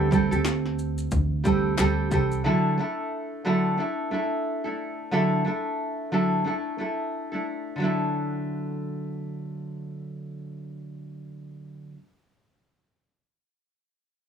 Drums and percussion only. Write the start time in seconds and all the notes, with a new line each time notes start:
0.12 kick, shaker
0.32 shaker
0.45 snare, clap, shaker
0.66 snare
0.79 shaker
0.98 shaker
1.11 kick, shaker
1.45 kick, shaker
1.78 snare, clap, shaker
2.11 kick, shaker
2.31 shaker